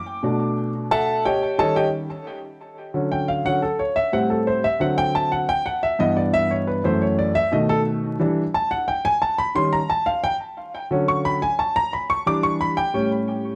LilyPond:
<<
  \new Staff \with { instrumentName = "Grand piano" } { \time 4/4 \key d \major \tempo 4 = 177 d'''2 r8 <a' e'' fis'' a''>4 <g' cis'' ees'' g''>8~ | <g' cis'' ees'' g''>8 <a' des'' ees'' a''>8 <g' des'' ees'' g''>8 r2 r8 | r4 g''8 f''8 fis''8 a'8 cis''8 e''8 | fis''8 a'8 c''8 e''8 fis''8 g''8 a''8 fis''8 |
g''8 fis''8 e''8 ees''8 d''8 e''8 cis''8 b'8 | c''8 cis''8 d''8 e''8 dis''8 a'8 r4 | r4 a''8 fis''8 g''8 gis''8 a''8 b''8 | c'''8 bes''8 a''8 f''8 g''8 r4. |
r8 cis'''8 b''8 gis''8 a''8 bes''8 b''8 cis'''8 | d'''8 cis'''8 b''8 g''4 r4. | }
  \new Staff \with { instrumentName = "Grand piano" } { \clef bass \time 4/4 \key d \major r8 <b, a d'>2.~ <b, a d'>8 | r8 <ees g des'>4. r2 | r8 <d fis cis'>4. <d fis cis'>8 r4. | <a, g c'>4. r8 <d fis c'>2 |
r4. <g, e b>2~ <g, e b>8 | <fis, e a>4. r8 <b, dis a>2 | <e g d'>8 r2. r8 | <ees g des'>8 r2. r8 |
<d fis cis'>4. r2 r8 | <e g d'>4. r8 <a, g cis'>2 | }
>>